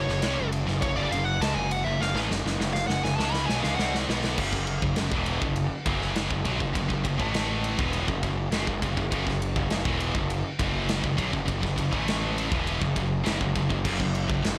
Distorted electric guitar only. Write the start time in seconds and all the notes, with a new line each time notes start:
0.09 F#2 C#3
0.23 C3 G3
0.37 F#2 C#3
0.67 F#2 C#3
0.82 F#2 C#3
0.96 F#2 C#3
1.13 F#2 C#3
1.42 C#3 G#3
1.58 F#2 C#3
1.87 F#2 C#3
2.01 F#2 C#3
2.15 A2 E3
2.31 F#2 C#3
2.46 F#2 C#3
2.60 F#2 C#3
2.89 F#2 C#3
3.03 F#2 C#3
3.18 C#3 G#3 C#4
3.49 B2 F#3
3.63 C#3 G#3
3.78 C3 G3 C4
4.08 B2 F#3 B3
4.38 F#2 C#3
4.52 F#2 C#3
4.82 F#2 C#3
4.98 F#2 C#3
5.13 E2 B2 E3
5.43 F#2 C#3
5.87 F#2 C#3 F#3
6.30 F#2 C#3
6.45 B2 F#3
6.59 F#2 C#3
6.74 F#2 C#3
6.89 F#2 C#3
7.04 F#2 C#3
7.18 A2 E3 A3
7.78 E2 B2 E3
8.07 F#2 C#3
8.23 F#2 C#3
8.53 F#2 C#3
8.67 F#2 C#3
8.82 F#2 C#3
8.97 F#2 C#3
9.11 F#2 C#3
9.26 F#2 C#3
9.57 F#2 C#3
9.72 F#2 C#3
9.86 E2 B2 E3
10.15 F#2 C#3
10.59 F#2 C#3 F#3
11.03 F#2 C#3
11.17 B2 F#3
11.32 F#2 C#3
11.46 F#2 C#3
11.61 F#2 C#3
11.77 F#2 C#3
11.91 A2 E3 A3
12.50 E2 B2 E3
12.80 F#2 C#3
12.96 F#2 C#3
13.24 F#2 C#3
13.39 F#2 C#3
13.55 F#2 C#3
13.69 F#2 C#3
13.85 F#2 C#3
13.99 F#2 C#3
14.28 F#2 C#3
14.42 F#2 C#3